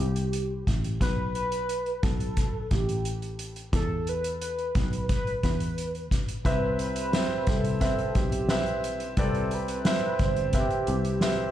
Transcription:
Already playing: G4
0.00 C2
0.16 closed hi-hat
0.33 closed hi-hat
0.67 A1, kick, closed hi-hat
0.84 closed hi-hat
1.01 B1 B4, kick, closed hi-hat
1.35 B4, closed hi-hat
1.52 closed hi-hat
1.69 closed hi-hat
1.86 closed hi-hat
2.03 B1 A4, kick, closed hi-hat
2.20 closed hi-hat
2.37 kick, closed hi-hat
2.71 A1 G4, kick, closed hi-hat
2.89 closed hi-hat
3.05 closed hi-hat
3.22 closed hi-hat
3.39 closed hi-hat
3.56 closed hi-hat
3.73 E2 A4, kick, closed hi-hat
4.07 B4, closed hi-hat
4.24 closed hi-hat
4.41 B4, closed hi-hat
4.59 closed hi-hat
4.75 B1, kick, closed hi-hat
4.93 closed hi-hat
5.09 B4, kick, closed hi-hat
5.27 closed hi-hat
5.43 E2 B4, kick, closed hi-hat
5.60 closed hi-hat
5.78 closed hi-hat
5.95 closed hi-hat
6.11 B1, kick, closed hi-hat
6.28 closed hi-hat
6.45 C2 C3 G3 C4 E4 B4 E5, kick, closed hi-hat
6.79 B4, closed hi-hat
6.96 closed hi-hat
7.13 C4 B4 E5, snare, closed hi-hat
7.47 C2 A4, kick, closed hi-hat
7.64 closed hi-hat
7.80 C4 B4 E5, kick, closed hi-hat
7.98 closed hi-hat
8.15 B1 G4, kick, closed hi-hat
8.32 closed hi-hat
8.49 C4 B4 E5, snare, closed hi-hat
8.66 closed hi-hat
8.84 closed hi-hat
9.00 closed hi-hat
9.17 C2 C3 A3 C4 A4 B4 D5, kick, closed hi-hat
9.34 closed hi-hat
9.51 B4, closed hi-hat
9.68 closed hi-hat
9.85 C4 B4 E5, snare, closed hi-hat
10.19 G1, kick, closed hi-hat
10.23 C5
10.36 closed hi-hat
10.53 C4 B4 E5, kick, closed hi-hat
10.58 G4
10.70 closed hi-hat
10.87 C2, closed hi-hat
11.05 closed hi-hat
11.21 C4 B4 E5, snare, closed hi-hat

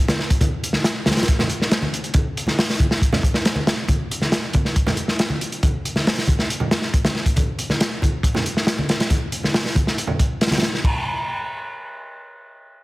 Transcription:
0.08 snare, closed hi-hat, high conga
0.19 snare
0.30 kick, closed hi-hat
0.41 kick, closed hi-hat, high conga
0.64 closed hi-hat
0.73 snare, high conga
0.84 snare, closed hi-hat
1.06 snare, closed hi-hat, high conga
1.11 snare, closed hi-hat
1.17 snare, closed hi-hat
1.23 snare, closed hi-hat
1.28 kick, closed hi-hat
1.39 snare, high conga, low conga
1.49 closed hi-hat
1.62 snare
1.71 snare, closed hi-hat
1.82 high conga
1.94 closed hi-hat
2.04 closed hi-hat
2.14 kick, closed hi-hat, high conga
2.37 closed hi-hat
2.46 snare, high conga
2.58 snare, open hi-hat
2.70 snare
2.80 kick, closed hi-hat, high conga
2.91 snare
3.02 kick, closed hi-hat
3.12 snare, high conga, low conga
3.23 kick, closed hi-hat
3.34 snare
3.45 snare, closed hi-hat
3.56 high conga
3.67 snare, closed hi-hat
3.88 kick, closed hi-hat, high conga
4.11 closed hi-hat
4.21 snare, high conga
4.32 snare, closed hi-hat
4.53 kick, closed hi-hat, high conga
4.65 snare
4.76 kick, closed hi-hat
4.87 snare, high conga, low conga
4.97 closed hi-hat
5.08 snare
5.19 snare, closed hi-hat
5.30 high conga
5.41 closed hi-hat
5.52 closed hi-hat
5.63 kick, closed hi-hat, high conga
5.85 closed hi-hat
5.96 snare, high conga
6.07 snare, open hi-hat
6.18 snare
6.27 kick, closed hi-hat, high conga
6.39 snare
6.50 closed hi-hat
6.60 high conga, low conga
6.71 snare, closed hi-hat
6.82 snare
6.94 kick, closed hi-hat
7.04 snare, closed hi-hat, high conga
7.16 snare
7.26 kick, closed hi-hat
7.36 kick, closed hi-hat, high conga
7.59 closed hi-hat
7.70 snare, high conga
7.81 snare, closed hi-hat
8.02 kick, closed hi-hat, high conga
8.23 kick, closed hi-hat
8.34 snare, high conga, low conga
8.46 closed hi-hat
8.57 snare
8.67 snare, closed hi-hat
8.79 high conga
8.89 snare, closed hi-hat
9.00 snare, closed hi-hat
9.10 kick, closed hi-hat, high conga
9.32 closed hi-hat
9.43 snare, high conga
9.54 snare, open hi-hat
9.65 snare
9.75 kick, closed hi-hat, high conga
9.87 snare
9.98 closed hi-hat
10.07 high conga, low conga
10.19 kick, closed hi-hat
10.41 snare, closed hi-hat
10.46 snare, closed hi-hat
10.51 snare, closed hi-hat, high conga
10.57 snare, closed hi-hat
10.62 snare, closed hi-hat
10.74 snare
10.84 kick, crash

